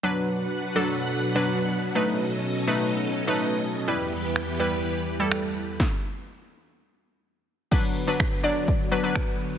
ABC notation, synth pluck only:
X:1
M:4/4
L:1/16
Q:1/4=125
K:Bm
V:1 name="Synth pluck"
[F,DB]3 z3 [F,DA]3 z2 [F,DB]3 z2 | [A,^DB]3 z3 [A,DB]3 z2 [A,DB]3 z2 | [G,EB]3 z3 [G,EB]3 z2 [G,EA]3 z2 | z16 |
[F,DB]2 z [F,DB]2 z [F,Dd]2 z2 [F,DB] [F,DB]3 z2 |]